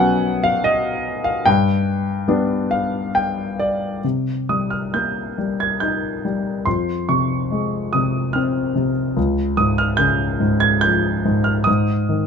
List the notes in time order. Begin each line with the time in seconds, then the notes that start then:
Already playing: B2 F#3 B3 C#4 F#5 G#5
0.44 F5
0.64 D#5
1.24 F5
1.46 G2 G5
2.28 G3 B3 D4
2.71 F5
3.15 G5
3.59 D5
4.04 C3
4.49 G3 D#6
4.70 F6
4.94 A#3 G6
5.38 G3
5.60 G#6
5.80 D#4 G6
6.25 G3
6.65 F2 C6
7.09 C3 C#6
7.51 G#3
7.93 C3 D#6
8.33 C4 F6
8.75 C3
9.17 C#2
9.57 G#2 D#6
9.78 F6
9.97 C#3 G6
10.40 G#2
10.60 G#6
10.81 F3 G6
11.25 G#2
11.44 F6
11.64 G#2 D#6
12.09 D#3